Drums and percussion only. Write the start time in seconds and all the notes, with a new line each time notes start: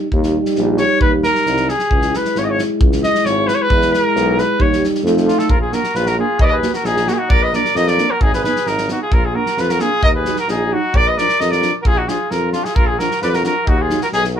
0.12 kick
0.23 snare
0.45 snare
0.55 snare
0.77 snare
1.01 kick
1.23 snare
1.35 snare
1.46 snare
1.57 snare
1.69 snare
1.79 snare
1.91 kick
2.02 snare
2.14 snare
2.25 snare
2.35 snare
2.59 snare
2.81 kick
2.92 snare
3.03 snare
3.15 snare
3.25 snare
3.48 snare
3.70 kick
3.82 snare
3.94 snare
4.16 snare
4.38 snare
4.60 kick
4.73 snare
4.84 snare
4.95 snare
5.06 snare
5.17 snare
5.28 snare
5.39 snare
5.50 kick
5.72 snare
5.83 snare
5.95 snare
6.06 snare
6.39 kick
6.62 snare
6.73 snare
6.85 snare
6.96 snare
7.07 snare
7.30 kick
7.53 snare
7.65 snare
7.76 snare
7.87 snare
7.98 snare
8.21 kick
8.33 snare
8.44 snare
8.56 snare
8.66 snare
8.78 snare
8.88 snare
9.12 kick
9.46 snare
9.57 snare
9.69 snare
9.79 snare
10.03 kick
10.25 snare
10.36 snare
10.48 snare
10.94 kick
11.18 snare
11.29 snare
11.40 snare
11.52 snare
11.62 snare
11.85 kick
12.08 snare
12.31 snare
12.53 snare
12.65 snare
12.76 kick
12.99 snare
13.11 snare
13.22 snare
13.33 snare
13.44 snare
13.67 kick
13.90 snare
14.01 snare
14.12 snare
14.24 snare